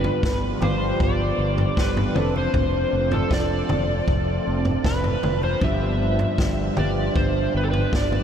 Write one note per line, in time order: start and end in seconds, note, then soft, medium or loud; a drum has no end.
0.00 0.59 G2 medium
0.00 0.60 D3 medium
0.00 0.62 F3 medium
0.00 2.13 G3 medium
0.00 0.60 B3 medium
0.00 8.23 D4 medium
0.00 0.61 F4 medium
0.00 8.23 F4 medium
0.00 0.59 G4 medium
0.00 0.63 B4 medium
0.04 floor tom medium
0.04 high conga medium
0.23 0.53 G1 medium
0.23 kick loud
0.23 snare medium
0.61 0.91 G1 medium
0.61 2.15 G2 medium
0.61 2.15 D3 medium
0.61 2.14 F3 medium
0.61 2.14 B3 medium
0.61 2.17 F4 medium
0.61 2.13 G4 medium
0.61 1.02 C5 medium
0.61 floor tom medium
0.61 mid tom medium
0.61 high conga medium
0.61 low conga medium
1.00 1.30 G1 medium
1.00 1.81 D5 medium
1.00 kick loud
1.38 1.68 G1 medium
1.58 floor tom medium
1.77 2.07 G1 medium
1.77 2.37 B4 medium
1.77 kick loud
1.77 snare medium
1.96 floor tom medium
1.96 high conga medium
2.14 2.46 F1 medium
2.14 3.30 F3 medium
2.14 5.59 A3 medium
2.14 5.59 C4 medium
2.14 3.29 C4 medium
2.14 3.32 D4 medium
2.14 3.30 A4 medium
2.14 mid tom medium
2.14 low conga medium
2.36 3.16 C5 medium
2.36 high conga medium
2.54 2.84 F1 medium
2.54 kick medium
2.54 floor tom medium
2.54 low conga medium
2.93 3.23 F1 medium
3.11 3.31 A4 medium
3.11 floor tom medium
3.11 high conga medium
3.30 3.61 F1 medium
3.30 5.62 F3 medium
3.30 5.22 C4 medium
3.30 5.64 D4 medium
3.30 5.23 A4 medium
3.30 4.91 D5 medium
3.30 kick loud
3.30 snare medium
3.69 4.00 F1 medium
3.69 floor tom medium
3.69 mid tom medium
3.69 high conga medium
3.69 low conga medium
4.08 4.38 F1 medium
4.08 kick loud
4.47 4.77 F1 medium
4.65 floor tom medium
4.84 5.15 F1 medium
4.84 5.39 B4 medium
4.84 kick loud
4.84 snare medium
5.04 floor tom medium
5.04 high conga medium
5.23 5.53 F1 medium
5.23 mid tom medium
5.23 low conga medium
5.43 5.63 C5 medium
5.43 high conga medium
5.61 6.22 G1 medium
5.61 6.75 G2 medium
5.61 6.75 D3 medium
5.61 6.79 F3 medium
5.61 8.23 G3 medium
5.61 6.76 B3 medium
5.61 6.77 F4 medium
5.61 6.76 G4 medium
5.61 6.79 E5 medium
5.61 kick loud
5.61 floor tom medium
5.61 low conga medium
6.19 floor tom medium
6.19 high conga medium
6.38 6.69 G1 medium
6.38 kick loud
6.38 snare medium
6.77 7.08 G1 medium
6.77 8.23 G2 medium
6.77 8.23 D3 medium
6.77 8.23 F3 medium
6.77 8.23 B3 medium
6.77 8.23 F4 medium
6.77 8.23 G4 medium
6.77 7.16 D5 medium
6.77 floor tom medium
6.77 mid tom medium
6.77 high conga medium
6.77 low conga medium
7.16 7.46 G1 medium
7.16 7.56 C5 medium
7.16 kick loud
7.55 7.84 G1 medium
7.55 7.62 B4 medium
7.64 7.70 A4 medium
7.71 7.93 B4 medium
7.71 floor tom medium
7.93 8.23 G1 medium
7.93 8.23 D5 medium
7.93 kick loud
7.93 snare medium
8.12 floor tom medium
8.12 high conga medium